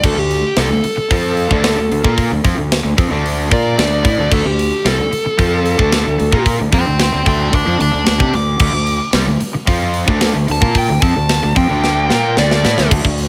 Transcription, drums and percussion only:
0.04 kick, crash
0.31 open hi-hat
0.56 snare, open hi-hat
0.84 open hi-hat
1.11 kick, open hi-hat
1.37 open hi-hat
1.51 kick
1.64 snare, open hi-hat
1.92 open hi-hat
2.04 kick
2.18 kick, open hi-hat
2.45 kick, open hi-hat
2.72 snare, open hi-hat
2.98 kick, open hi-hat
3.26 open hi-hat
3.51 kick
3.79 snare, open hi-hat
4.05 kick, open hi-hat
4.32 kick, crash
4.59 open hi-hat
4.86 snare, open hi-hat
5.13 open hi-hat
5.39 kick, open hi-hat
5.66 open hi-hat
5.79 kick
5.92 snare, open hi-hat
6.20 open hi-hat
6.32 kick
6.46 kick, open hi-hat
6.72 kick, open hi-hat
6.99 snare, open hi-hat
7.26 kick, open hi-hat
7.53 kick, open hi-hat
7.80 open hi-hat
8.06 snare, open hi-hat
8.20 kick
8.34 open hi-hat
8.59 kick, crash
8.87 open hi-hat
9.13 snare, open hi-hat
9.40 open hi-hat
9.67 kick, open hi-hat
9.94 open hi-hat
10.08 kick
10.21 snare, open hi-hat
10.48 open hi-hat
10.62 kick
10.75 kick, open hi-hat
11.02 kick, open hi-hat
11.29 snare, open hi-hat
11.56 kick, open hi-hat
11.84 snare
12.10 snare
12.37 snare
12.51 snare
12.65 snare
12.78 snare
12.91 kick, crash
13.05 kick
13.18 open hi-hat

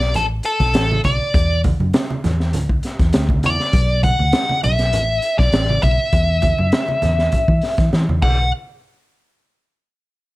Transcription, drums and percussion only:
0.00 snare
0.14 closed hi-hat, muted conga, low conga
0.43 closed hi-hat
0.60 kick, snare, closed hi-hat
0.74 snare, closed hi-hat, muted conga
0.92 high conga
1.04 kick, closed hi-hat, high conga
1.34 kick, closed hi-hat
1.64 kick, closed hi-hat, muted conga, high conga
1.80 high conga
1.93 snare, closed hi-hat, muted conga
2.10 high conga
2.24 snare, closed hi-hat, muted conga, low conga
2.40 snare
2.53 closed hi-hat, muted conga, low conga
2.69 kick
2.83 snare, closed hi-hat
2.99 kick, snare, closed hi-hat
3.13 snare, closed hi-hat
3.29 kick, high conga
3.43 closed hi-hat, high conga
3.60 snare
3.73 kick, closed hi-hat, muted conga
4.03 kick, closed hi-hat, high conga
4.19 high conga
4.32 snare, closed hi-hat, muted conga
4.49 high conga
4.63 closed hi-hat, low conga
4.79 snare, closed hi-hat
4.93 closed hi-hat, muted conga, low conga
5.22 closed hi-hat
5.39 kick, snare
5.52 snare, closed hi-hat
5.70 high conga
5.82 kick, closed hi-hat, high conga
6.13 kick, closed hi-hat, muted conga
6.42 kick, closed hi-hat, muted conga, high conga
6.58 high conga
6.72 snare, closed hi-hat
6.88 high conga
7.02 snare, closed hi-hat, high conga, low conga
7.19 snare
7.32 kick, closed hi-hat, low conga
7.48 kick
7.61 snare, open hi-hat
7.78 kick, snare, closed hi-hat
7.93 snare, muted conga
8.09 high conga
8.22 kick, crash, high conga

